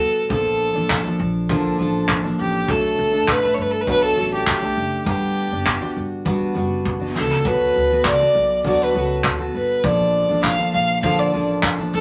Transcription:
0.00 0.25 G1 medium
0.00 0.30 B3 soft
0.00 0.31 F#4 soft
0.00 0.28 A4 medium
0.00 0.31 A4 soft
0.29 0.67 A#1 medium
0.29 0.74 F3 soft
0.29 0.75 A#3 medium
0.29 0.73 D4 medium
0.29 0.72 A4 medium
0.29 kick loud
0.33 1.17 A4 medium
0.73 1.00 A1 medium
0.73 1.06 F3 soft
0.73 1.05 A#3 soft
0.73 1.04 D4 soft
0.73 1.03 A4 soft
0.90 kick loud
0.90 clap loud
1.04 1.48 F3 soft
1.04 1.49 A#3 soft
1.04 1.50 D4 soft
1.04 1.49 A4 medium
1.19 1.68 A#1 loud
1.49 1.79 A#2 medium
1.49 1.79 D3 medium
1.49 1.77 F3 medium
1.49 1.79 A#3 loud
1.49 1.80 D4 loud
1.49 1.80 A4 loud
1.49 kick loud
1.78 2.28 A1 medium
1.78 2.24 F3 medium
1.78 2.24 A#3 medium
1.78 2.23 D4 medium
1.78 2.21 A4 medium
2.09 kick loud
2.09 clap loud
2.22 2.67 F3 soft
2.22 2.68 A#3 soft
2.22 2.68 D4 medium
2.22 2.68 A4 medium
2.39 2.64 A1 medium
2.39 2.72 G4 medium
2.67 2.93 B1 medium
2.67 3.13 F#3 medium
2.67 3.13 A3 medium
2.67 3.12 D4 medium
2.67 3.10 A4 medium
2.67 3.32 A4 medium
2.67 kick loud
2.99 3.23 B1 medium
3.11 3.44 A3 soft
3.11 3.43 D4 soft
3.11 3.41 A4 soft
3.28 3.53 A1 medium
3.28 3.56 B4 medium
3.28 kick loud
3.28 clap loud
3.43 3.86 A3 soft
3.43 3.87 D4 soft
3.43 3.87 A4 medium
3.54 3.82 G1 medium
3.54 3.63 C#5 medium
3.62 3.73 B4 medium
3.71 3.82 A4 medium
3.81 3.89 B4 medium
3.87 4.12 B1 medium
3.87 4.17 B2 medium
3.87 4.14 F#3 medium
3.87 4.15 A3 medium
3.87 4.17 D4 medium
3.87 4.18 A4 medium
3.87 4.03 B4 loud
3.87 kick loud
4.04 4.31 A4 medium
4.16 4.42 A1 medium
4.16 4.61 F#3 medium
4.16 4.62 A3 medium
4.16 4.61 D4 medium
4.16 4.59 A4 medium
4.34 4.47 G4 medium
4.47 4.72 B1 medium
4.47 5.04 G4 medium
4.47 kick loud
4.47 clap loud
4.60 5.05 A3 soft
4.60 5.06 D4 soft
4.60 5.06 A4 medium
4.77 5.01 F#1 medium
5.05 5.43 G1 medium
5.05 5.50 G3 medium
5.05 5.51 B3 medium
5.05 5.51 D4 medium
5.05 kick loud
5.09 5.93 G4 medium
5.52 5.76 F#1 medium
5.52 5.83 B3 soft
5.52 5.81 D4 soft
5.66 kick loud
5.66 clap loud
5.81 6.25 B3 soft
5.81 6.26 D4 soft
5.81 6.26 F#4 medium
5.97 6.45 G1 medium
6.25 6.53 G3 medium
6.25 6.54 B3 medium
6.25 6.56 D4 medium
6.25 6.56 F#4 medium
6.25 kick medium
6.55 7.17 F#1 medium
6.55 7.00 G3 medium
6.55 7.00 B3 medium
6.55 7.00 D4 medium
6.55 6.99 F#4 medium
6.85 kick loud
7.00 7.44 B3 soft
7.00 7.46 D4 soft
7.00 7.45 F#4 soft
7.15 7.40 C#2 medium
7.15 7.48 A4 medium
7.15 snare medium
7.30 snare medium
7.45 7.70 D2 medium
7.45 7.90 F#3 medium
7.45 7.90 B3 medium
7.45 7.91 F#4 medium
7.45 7.88 A4 medium
7.45 8.05 B4 medium
7.45 kick loud
7.76 8.00 D2 medium
7.90 8.21 B3 soft
7.90 8.19 F#4 soft
7.90 8.18 A4 medium
8.05 8.29 C#2 medium
8.05 8.61 D5 medium
8.05 kick medium
8.05 clap loud
8.19 8.64 B3 soft
8.19 8.65 F#4 soft
8.19 8.64 A4 soft
8.35 8.59 B1 medium
8.64 8.89 D2 medium
8.64 8.94 D3 medium
8.64 8.93 F#3 medium
8.64 8.95 B3 medium
8.64 8.95 F#4 medium
8.64 8.95 A4 medium
8.64 8.84 D5 medium
8.64 kick medium
8.83 9.11 B4 medium
8.94 9.19 C#2 medium
8.94 9.39 F#3 medium
8.94 9.40 B3 medium
8.94 9.39 F#4 medium
8.94 9.38 A4 medium
9.24 9.49 D2 medium
9.24 kick loud
9.24 clap loud
9.39 9.85 B3 soft
9.39 9.85 F#4 soft
9.39 9.84 A4 medium
9.54 9.79 G1 medium
9.54 9.86 B4 medium
9.84 10.21 A#1 loud
9.84 10.29 F3 medium
9.84 10.29 A#3 soft
9.84 10.28 D4 medium
9.84 10.27 A4 medium
9.84 10.43 D5 medium
9.84 kick loud
10.28 10.54 A1 medium
10.28 10.60 F3 soft
10.28 10.59 A#3 soft
10.28 10.58 D4 medium
10.28 10.57 A4 medium
10.44 10.71 F5 medium
10.44 kick medium
10.44 clap loud
10.58 11.03 F3 soft
10.58 11.03 A#3 soft
10.58 11.04 D4 soft
10.58 11.03 A4 soft
10.74 11.23 A#1 loud
10.74 11.01 F5 loud
11.03 11.33 A#2 medium
11.03 11.33 D3 medium
11.03 11.31 F3 medium
11.03 11.33 A#3 medium
11.03 11.34 D4 loud
11.03 11.34 A4 medium
11.03 11.20 F5 loud
11.03 kick loud
11.19 11.48 D5 medium
11.32 11.82 A1 medium
11.32 11.77 F3 medium
11.32 11.78 A#3 medium
11.32 11.79 D4 medium
11.32 11.77 A4 medium
11.63 kick loud
11.63 clap loud
11.78 12.01 F3 soft
11.78 12.01 A#3 soft
11.78 12.01 D4 medium
11.78 12.01 A4 medium
11.94 12.01 A1 medium
11.94 12.01 A4 loud

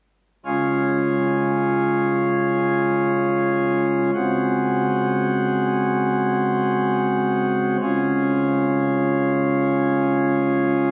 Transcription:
0.45 4.10 C#3 medium
0.45 4.10 G#3 soft
0.45 4.10 C#4 soft
0.45 4.10 F4 soft
4.14 7.77 C#3 medium
4.14 7.77 G#3 medium
4.14 7.77 C4 soft
4.14 7.77 F#4 soft
7.81 10.91 C#3 medium
7.81 10.91 G#3 medium
7.81 10.91 C#4 medium
7.81 10.91 F4 medium

